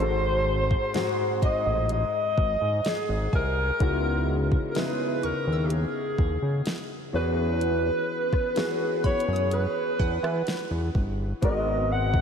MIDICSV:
0, 0, Header, 1, 7, 480
1, 0, Start_track
1, 0, Key_signature, 5, "minor"
1, 0, Tempo, 952381
1, 1917, Time_signature, 4, 2, 24, 8
1, 6156, End_track
2, 0, Start_track
2, 0, Title_t, "Synth pluck"
2, 0, Program_c, 0, 84
2, 0, Note_on_c, 0, 78, 72
2, 217, Note_off_c, 0, 78, 0
2, 719, Note_on_c, 0, 75, 69
2, 1603, Note_off_c, 0, 75, 0
2, 1678, Note_on_c, 0, 80, 58
2, 2137, Note_off_c, 0, 80, 0
2, 2637, Note_on_c, 0, 85, 65
2, 2785, Note_on_c, 0, 88, 57
2, 3522, Note_off_c, 0, 85, 0
2, 3656, Note_off_c, 0, 88, 0
2, 4556, Note_on_c, 0, 83, 74
2, 4702, Note_on_c, 0, 87, 55
2, 5037, Note_on_c, 0, 78, 85
2, 5441, Note_off_c, 0, 83, 0
2, 5574, Note_off_c, 0, 87, 0
2, 5922, Note_off_c, 0, 78, 0
2, 6156, End_track
3, 0, Start_track
3, 0, Title_t, "Alto saxophone"
3, 0, Program_c, 1, 65
3, 0, Note_on_c, 1, 72, 113
3, 701, Note_off_c, 1, 72, 0
3, 729, Note_on_c, 1, 75, 106
3, 947, Note_off_c, 1, 75, 0
3, 968, Note_on_c, 1, 75, 121
3, 1448, Note_on_c, 1, 68, 97
3, 1456, Note_off_c, 1, 75, 0
3, 1683, Note_off_c, 1, 68, 0
3, 1688, Note_on_c, 1, 70, 103
3, 2246, Note_off_c, 1, 70, 0
3, 2370, Note_on_c, 1, 70, 68
3, 2409, Note_on_c, 1, 71, 100
3, 2417, Note_off_c, 1, 70, 0
3, 2646, Note_on_c, 1, 70, 87
3, 2654, Note_off_c, 1, 71, 0
3, 2851, Note_on_c, 1, 67, 56
3, 2859, Note_off_c, 1, 70, 0
3, 2885, Note_on_c, 1, 68, 85
3, 2893, Note_off_c, 1, 67, 0
3, 3361, Note_off_c, 1, 68, 0
3, 3605, Note_on_c, 1, 71, 103
3, 4541, Note_off_c, 1, 71, 0
3, 4563, Note_on_c, 1, 73, 106
3, 4784, Note_off_c, 1, 73, 0
3, 4804, Note_on_c, 1, 71, 104
3, 5501, Note_off_c, 1, 71, 0
3, 5767, Note_on_c, 1, 75, 99
3, 6006, Note_on_c, 1, 78, 112
3, 6014, Note_off_c, 1, 75, 0
3, 6156, Note_off_c, 1, 78, 0
3, 6156, End_track
4, 0, Start_track
4, 0, Title_t, "Grand piano"
4, 0, Program_c, 2, 0
4, 0, Control_c, 2, 64, 127
4, 0, Note_on_c, 2, 44, 81
4, 0, Note_on_c, 2, 56, 74
4, 0, Note_on_c, 2, 60, 77
4, 1, Note_on_c, 2, 66, 76
4, 4, Control_c, 2, 64, 0
4, 4, Note_on_c, 2, 69, 88
4, 94, Control_c, 2, 64, 127
4, 392, Note_off_c, 2, 44, 0
4, 394, Note_off_c, 2, 56, 0
4, 395, Note_off_c, 2, 60, 0
4, 397, Note_off_c, 2, 66, 0
4, 398, Note_off_c, 2, 69, 0
4, 472, Note_on_c, 2, 44, 93
4, 475, Note_on_c, 2, 56, 88
4, 478, Note_on_c, 2, 60, 84
4, 481, Note_on_c, 2, 66, 85
4, 484, Note_on_c, 2, 68, 108
4, 1270, Note_off_c, 2, 44, 0
4, 1271, Note_off_c, 2, 56, 0
4, 1273, Note_off_c, 2, 60, 0
4, 1274, Note_off_c, 2, 66, 0
4, 1275, Note_off_c, 2, 68, 0
4, 1913, Note_on_c, 2, 49, 81
4, 1915, Note_on_c, 2, 56, 76
4, 1918, Note_on_c, 2, 59, 76
4, 1920, Note_on_c, 2, 63, 75
4, 1922, Note_on_c, 2, 64, 76
4, 1924, Control_c, 2, 64, 0
4, 1924, Note_on_c, 2, 66, 93
4, 2001, Control_c, 2, 64, 127
4, 2312, Note_off_c, 2, 49, 0
4, 2314, Note_off_c, 2, 56, 0
4, 2315, Note_off_c, 2, 59, 0
4, 2316, Note_off_c, 2, 63, 0
4, 2317, Note_off_c, 2, 64, 0
4, 2318, Note_off_c, 2, 66, 0
4, 2393, Note_on_c, 2, 49, 80
4, 2395, Note_on_c, 2, 56, 71
4, 2398, Note_on_c, 2, 59, 76
4, 2400, Note_on_c, 2, 63, 74
4, 2403, Note_on_c, 2, 64, 71
4, 2405, Note_on_c, 2, 68, 90
4, 3190, Note_off_c, 2, 49, 0
4, 3191, Note_off_c, 2, 56, 0
4, 3192, Note_off_c, 2, 59, 0
4, 3194, Note_off_c, 2, 63, 0
4, 3195, Note_off_c, 2, 64, 0
4, 3196, Note_off_c, 2, 68, 0
4, 3593, Note_on_c, 2, 52, 84
4, 3596, Note_on_c, 2, 59, 76
4, 3599, Note_on_c, 2, 61, 75
4, 3602, Note_on_c, 2, 66, 74
4, 3604, Control_c, 2, 64, 0
4, 3605, Note_on_c, 2, 68, 84
4, 3686, Control_c, 2, 64, 127
4, 4191, Note_off_c, 2, 52, 0
4, 4192, Note_off_c, 2, 59, 0
4, 4194, Note_off_c, 2, 61, 0
4, 4196, Note_off_c, 2, 66, 0
4, 4197, Note_off_c, 2, 68, 0
4, 4313, Note_on_c, 2, 52, 90
4, 4316, Note_on_c, 2, 59, 79
4, 4319, Note_on_c, 2, 61, 82
4, 4322, Note_on_c, 2, 66, 83
4, 4325, Note_on_c, 2, 68, 104
4, 5110, Note_off_c, 2, 52, 0
4, 5112, Note_off_c, 2, 59, 0
4, 5113, Note_off_c, 2, 61, 0
4, 5115, Note_off_c, 2, 66, 0
4, 5116, Note_off_c, 2, 68, 0
4, 5753, Note_on_c, 2, 44, 78
4, 5756, Note_on_c, 2, 56, 75
4, 5759, Note_on_c, 2, 59, 74
4, 5762, Note_on_c, 2, 66, 72
4, 5763, Control_c, 2, 64, 0
4, 5765, Note_on_c, 2, 70, 88
4, 5843, Control_c, 2, 64, 127
4, 6152, Note_off_c, 2, 44, 0
4, 6154, Note_off_c, 2, 56, 0
4, 6155, Note_off_c, 2, 59, 0
4, 6156, Note_off_c, 2, 66, 0
4, 6156, Note_off_c, 2, 70, 0
4, 6156, End_track
5, 0, Start_track
5, 0, Title_t, "Analog synth bass"
5, 0, Program_c, 3, 38
5, 0, Note_on_c, 3, 32, 109
5, 385, Note_off_c, 3, 32, 0
5, 717, Note_on_c, 3, 33, 51
5, 765, Note_off_c, 3, 33, 0
5, 838, Note_on_c, 3, 33, 95
5, 1031, Note_off_c, 3, 33, 0
5, 1198, Note_on_c, 3, 32, 94
5, 1294, Note_off_c, 3, 32, 0
5, 1318, Note_on_c, 3, 44, 93
5, 1415, Note_off_c, 3, 44, 0
5, 1557, Note_on_c, 3, 32, 88
5, 1654, Note_off_c, 3, 32, 0
5, 1678, Note_on_c, 3, 36, 96
5, 1872, Note_off_c, 3, 36, 0
5, 1918, Note_on_c, 3, 37, 104
5, 2305, Note_off_c, 3, 37, 0
5, 2638, Note_on_c, 3, 39, 47
5, 2685, Note_off_c, 3, 39, 0
5, 2757, Note_on_c, 3, 39, 98
5, 2951, Note_off_c, 3, 39, 0
5, 3117, Note_on_c, 3, 39, 90
5, 3214, Note_off_c, 3, 39, 0
5, 3237, Note_on_c, 3, 49, 92
5, 3334, Note_off_c, 3, 49, 0
5, 3597, Note_on_c, 3, 40, 102
5, 3985, Note_off_c, 3, 40, 0
5, 4557, Note_on_c, 3, 42, 50
5, 4605, Note_off_c, 3, 42, 0
5, 4677, Note_on_c, 3, 42, 98
5, 4871, Note_off_c, 3, 42, 0
5, 5038, Note_on_c, 3, 40, 96
5, 5134, Note_off_c, 3, 40, 0
5, 5157, Note_on_c, 3, 52, 98
5, 5254, Note_off_c, 3, 52, 0
5, 5397, Note_on_c, 3, 40, 88
5, 5494, Note_off_c, 3, 40, 0
5, 5519, Note_on_c, 3, 31, 89
5, 5712, Note_off_c, 3, 31, 0
5, 5758, Note_on_c, 3, 32, 105
5, 6145, Note_off_c, 3, 32, 0
5, 6156, End_track
6, 0, Start_track
6, 0, Title_t, "Downlifter"
6, 0, Program_c, 4, 103
6, 0, Note_on_c, 4, 60, 84
6, 1917, Note_off_c, 4, 60, 0
6, 6156, End_track
7, 0, Start_track
7, 0, Title_t, "Drums"
7, 0, Note_on_c, 9, 42, 76
7, 48, Note_off_c, 9, 42, 0
7, 357, Note_on_c, 9, 36, 100
7, 407, Note_off_c, 9, 36, 0
7, 475, Note_on_c, 9, 42, 67
7, 482, Note_on_c, 9, 38, 120
7, 526, Note_off_c, 9, 42, 0
7, 532, Note_off_c, 9, 38, 0
7, 717, Note_on_c, 9, 36, 93
7, 719, Note_on_c, 9, 42, 60
7, 767, Note_off_c, 9, 36, 0
7, 769, Note_off_c, 9, 42, 0
7, 955, Note_on_c, 9, 42, 75
7, 1005, Note_off_c, 9, 42, 0
7, 1197, Note_on_c, 9, 36, 103
7, 1248, Note_off_c, 9, 36, 0
7, 1435, Note_on_c, 9, 42, 66
7, 1441, Note_on_c, 9, 38, 122
7, 1485, Note_off_c, 9, 42, 0
7, 1492, Note_off_c, 9, 38, 0
7, 1678, Note_on_c, 9, 36, 90
7, 1728, Note_off_c, 9, 36, 0
7, 1917, Note_on_c, 9, 36, 126
7, 1917, Note_on_c, 9, 42, 73
7, 1967, Note_off_c, 9, 42, 0
7, 1968, Note_off_c, 9, 36, 0
7, 2276, Note_on_c, 9, 36, 106
7, 2327, Note_off_c, 9, 36, 0
7, 2394, Note_on_c, 9, 42, 67
7, 2401, Note_on_c, 9, 38, 117
7, 2445, Note_off_c, 9, 42, 0
7, 2451, Note_off_c, 9, 38, 0
7, 2638, Note_on_c, 9, 42, 63
7, 2688, Note_off_c, 9, 42, 0
7, 2874, Note_on_c, 9, 42, 74
7, 2925, Note_off_c, 9, 42, 0
7, 3117, Note_on_c, 9, 36, 104
7, 3168, Note_off_c, 9, 36, 0
7, 3354, Note_on_c, 9, 42, 66
7, 3361, Note_on_c, 9, 38, 124
7, 3405, Note_off_c, 9, 42, 0
7, 3411, Note_off_c, 9, 38, 0
7, 3837, Note_on_c, 9, 42, 74
7, 3887, Note_off_c, 9, 42, 0
7, 4197, Note_on_c, 9, 36, 96
7, 4200, Note_on_c, 9, 37, 66
7, 4247, Note_off_c, 9, 36, 0
7, 4250, Note_off_c, 9, 37, 0
7, 4315, Note_on_c, 9, 42, 65
7, 4321, Note_on_c, 9, 38, 125
7, 4365, Note_off_c, 9, 42, 0
7, 4372, Note_off_c, 9, 38, 0
7, 4557, Note_on_c, 9, 36, 88
7, 4557, Note_on_c, 9, 42, 40
7, 4607, Note_off_c, 9, 36, 0
7, 4608, Note_off_c, 9, 42, 0
7, 4638, Note_on_c, 9, 42, 50
7, 4688, Note_off_c, 9, 42, 0
7, 4718, Note_on_c, 9, 42, 58
7, 4768, Note_off_c, 9, 42, 0
7, 4795, Note_on_c, 9, 42, 72
7, 4846, Note_off_c, 9, 42, 0
7, 5038, Note_on_c, 9, 36, 105
7, 5088, Note_off_c, 9, 36, 0
7, 5162, Note_on_c, 9, 37, 97
7, 5212, Note_off_c, 9, 37, 0
7, 5276, Note_on_c, 9, 42, 67
7, 5283, Note_on_c, 9, 38, 126
7, 5326, Note_off_c, 9, 42, 0
7, 5333, Note_off_c, 9, 38, 0
7, 5519, Note_on_c, 9, 36, 95
7, 5569, Note_off_c, 9, 36, 0
7, 5758, Note_on_c, 9, 36, 112
7, 5759, Note_on_c, 9, 42, 73
7, 5808, Note_off_c, 9, 36, 0
7, 5809, Note_off_c, 9, 42, 0
7, 6117, Note_on_c, 9, 36, 105
7, 6156, Note_off_c, 9, 36, 0
7, 6156, End_track
0, 0, End_of_file